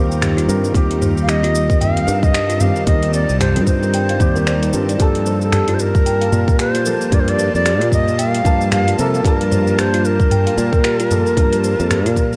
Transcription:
Already playing: fretless electric bass D#2, felt piano D#3 C4 G4 A#4, ambient pad G3 C4 D#4 A#4
0.12 shaker
0.21 kalimba G4, finger snap, closed hi-hat, mid tom, shaker
0.37 kalimba F4, closed hi-hat, shaker
0.47 fretless electric bass G2, felt piano D#3 C4 A#4, shaker
0.64 kalimba A#4, shaker
0.72 fretless electric bass D#2, felt piano D#3 C4, kalimba G4, ambient pad A5, kick, closed hi-hat, shaker
0.76 felt piano G4
0.91 closed hi-hat
1.01 kalimba C5, mid tom, shaker
1.17 shaker
1.23 native american-style wooden flute F5
1.28 kalimba G4, native american-style wooden flute D#5, finger snap, closed hi-hat, shaker
1.43 kalimba F4, closed hi-hat
1.55 shaker
1.70 kalimba A#4, kick, shaker
1.81 native american-style wooden flute F5, kalimba G5, closed hi-hat, mid tom, shaker
1.96 kalimba F5, closed hi-hat
2.07 fretless electric bass G2, kalimba A#4, shaker
2.15 native american-style wooden flute F5
2.23 native american-style wooden flute D#5, kick, shaker
2.34 kalimba G4, finger snap, closed hi-hat, shaker
2.50 kalimba F4, closed hi-hat, shaker
2.60 felt piano D#3 C4 G4, native american-style wooden flute F5, mid tom, shaker
2.76 kalimba A#4, shaker
2.86 fretless electric bass D#2, felt piano D#3 C4 A#4, kalimba G4, native american-style wooden flute D#5, kick, closed hi-hat, shaker
3.03 closed hi-hat
3.14 kalimba C5, native american-style wooden flute D5, shaker
3.29 fretless electric bass C2, shaker
3.40 kalimba G4, native american-style wooden flute C5, finger snap, closed hi-hat, mid tom, shaker
3.56 fretless electric bass G2, kalimba F4, closed hi-hat
3.67 native american-style wooden flute C5, kick, shaker
3.83 kalimba A#4, shaker
3.94 kalimba G5, closed hi-hat, shaker
4.09 kalimba F5, closed hi-hat
4.20 fretless electric bass D#2, felt piano D#3 C4 G4, kalimba D5, kick, mid tom, shaker
4.36 felt piano D#3 C4 G4, kalimba A#4, shaker
4.47 kalimba D5, finger snap, closed hi-hat, shaker
4.63 kalimba A#4, closed hi-hat, shaker
4.73 fretless electric bass G2, felt piano D#3 C4 F4, shaker
4.89 kalimba D5, closed hi-hat, shaker
4.98 fretless electric bass G2, felt piano F3 A#3, ambient pad G3 A#3 F4 A5, kalimba G4, native american-style wooden flute A4, kick, closed hi-hat, shaker
5.02 felt piano A5
5.15 closed hi-hat
5.26 kalimba C5, shaker
5.41 native american-style wooden flute A4, shaker
5.52 kalimba G4, finger snap, closed hi-hat, mid tom, shaker
5.68 kalimba F4, closed hi-hat
5.74 native american-style wooden flute C5
5.79 native american-style wooden flute A#4, shaker
5.95 kalimba A#4, kick, shaker
6.06 kalimba G5, closed hi-hat, shaker
6.21 kalimba F5, closed hi-hat
6.32 fretless electric bass A#2, kalimba A#4, mid tom, shaker
6.48 kick, shaker
6.59 kalimba G4, native american-style wooden flute C5, finger snap, closed hi-hat, shaker
6.75 kalimba F4, closed hi-hat, shaker
6.85 felt piano F3 A#3 A4, shaker
7.01 kalimba A#4, shaker
7.12 fretless electric bass G2, felt piano F3 A#3 A#4, kalimba G4, native american-style wooden flute D5, kick, closed hi-hat, mid tom, shaker
7.20 native american-style wooden flute C5
7.28 native american-style wooden flute D5, closed hi-hat
7.39 kalimba C5, shaker
7.55 fretless electric bass F2, native american-style wooden flute D5, shaker
7.65 kalimba G4, finger snap, closed hi-hat, shaker
7.81 fretless electric bass A#2, kalimba F4, closed hi-hat
7.92 native american-style wooden flute D#5, kick, mid tom, shaker
8.07 kalimba A#4, shaker
8.19 native american-style wooden flute F5, kalimba G5, closed hi-hat, shaker
8.34 kalimba F5, closed hi-hat
8.44 fretless electric bass G2, felt piano F3 A#3 A5, kalimba A#4, kick, shaker
8.61 shaker
8.71 kalimba G4, native american-style wooden flute F5, finger snap, closed hi-hat, mid tom, shaker
8.87 kalimba F4, closed hi-hat, shaker
8.98 fretless electric bass C3, felt piano F3 A#3 A#4, native american-style wooden flute A4, shaker
9.14 kalimba A#4, shaker
9.23 fretless electric bass G2, felt piano F3 A#3, kalimba G4, native american-style wooden flute A#4, kick, closed hi-hat, shaker
9.27 felt piano A5
9.41 closed hi-hat
9.52 kalimba C5, mid tom, shaker
9.67 shaker
9.78 kalimba G4, native american-style wooden flute C5, finger snap, closed hi-hat, shaker
9.94 kalimba F4, closed hi-hat
10.05 native american-style wooden flute A#4, shaker
10.20 kalimba A#4, kick, shaker
10.31 kalimba G5, closed hi-hat, mid tom, shaker
10.46 kalimba F5, closed hi-hat
10.58 fretless electric bass A#2, kalimba A#4, shaker
10.73 kick, shaker
10.84 kalimba G4, finger snap, closed hi-hat, shaker
11.00 kalimba F4, closed hi-hat, shaker
11.10 felt piano F3 A#3 A4, mid tom, shaker
11.26 kalimba A#4, shaker
11.37 fretless electric bass G2, felt piano F3 A#3 A#4, kalimba G4, kick, closed hi-hat, shaker
11.53 closed hi-hat, shaker
11.64 kalimba C5, shaker
11.80 fretless electric bass F2, shaker
11.91 kalimba G4, finger snap, closed hi-hat, mid tom, shaker
12.06 fretless electric bass A#2, kalimba F4, closed hi-hat, shaker
12.16 kick, shaker
12.33 kalimba A#4, shaker

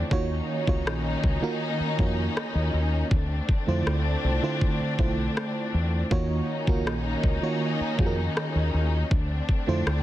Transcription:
Already playing: fm electric piano D3 A3 E4 F4 C5 D5
0.11 fingered electric bass D#2, fm electric piano D#3 A#3 F4 F#4 C#5, string section D#3 A#3 C#4 D#4, kick
0.67 fingered electric bass C#2, fm electric piano D#3 A#3 F4 F#4 C#5, kick
0.86 fingered electric bass A#1, cross-stick
1.24 fingered electric bass C#2, kick
1.42 fm electric piano D#3 A#3 F4 F#4 A#4
1.80 muted fingered electric bass stroke
1.98 fingered electric bass F2, fm electric piano D#3 A#3 F4 F#4 C#5, kick
2.37 cross-stick
2.55 fingered electric bass D#2
2.74 fingered electric bass D#2
3.11 fingered electric bass D2, string section D3 A3 C4 D4, kick
3.49 kick
3.67 fingered electric bass F2, fm electric piano D3 A3 E4 F4 C5
3.86 fingered electric bass D2, cross-stick
4.24 fingered electric bass C2
4.42 fm electric piano D3 A3 E4 F4 C5
4.61 kick
4.80 muted fingered electric bass stroke
4.98 fingered electric bass B1, fm electric piano D3 A3 E4 F4 C5, kick
5.37 cross-stick
5.74 fingered electric bass E2
6.11 fingered electric bass D#2, fm electric piano D#3 A#3 F4 F#4 C#5, string section D#3 A#3 C#4 D#4, kick
6.67 fingered electric bass C#2, fm electric piano D#3 A#3 F4 F#4 A#4, kick
6.86 fingered electric bass A#1, cross-stick
7.24 fingered electric bass C#2, kick
7.42 fm electric piano D#3 A#3 F4 F#4 C#5
7.80 muted fingered electric bass stroke
7.98 fingered electric bass F2, fm electric piano D#3 A#3 F4 F#4 G#4, kick
8.06 fm electric piano A#4
8.37 cross-stick
8.55 fingered electric bass D#2
8.74 fingered electric bass D#2
9.11 fingered electric bass D2, string section D3 A3 C4 D4, kick
9.49 kick
9.67 fingered electric bass F2, fm electric piano D3 A3 E4 F4 C5
9.86 fingered electric bass D2, cross-stick

